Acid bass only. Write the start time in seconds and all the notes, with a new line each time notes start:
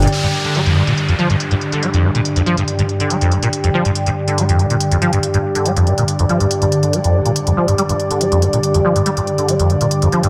0.02 A#2
0.23 G2
0.45 D3
0.55 G3
0.66 F2
0.76 G2
0.87 A#2
1.08 F2
1.19 F3
1.30 G2
1.51 G2
1.72 D3
1.83 G3
1.94 F2
2.04 G2
2.15 A#2
2.36 F2
2.46 F3
2.57 G2
2.79 G2
3.00 D3
3.10 G3
3.21 F2
3.31 G2
3.42 A#2
3.64 F2
3.74 F3
3.85 G2
4.06 G2
4.28 D3
4.38 G3
4.49 F2
4.59 G2
4.70 A#2
4.91 F2
5.02 F3
5.13 G2
5.34 G2
5.55 D3
5.65 G3
5.76 F2
5.87 G2
5.98 A#2
6.19 F2
6.29 F3
6.40 G2
6.62 G2
6.83 D3
6.93 G3
7.04 F2
7.14 G2
7.25 A#2
7.47 F2
7.57 F3
7.68 G2
7.78 G3
7.89 G2
8.11 D3
8.21 G3
8.32 F2
8.42 G2
8.53 A#2
8.74 F2
8.85 F3
8.96 G2
9.06 G3
9.17 G2
9.38 D3
9.48 G3
9.60 F2
9.70 G2
9.81 A#2
10.02 F2
10.12 F3
10.23 G2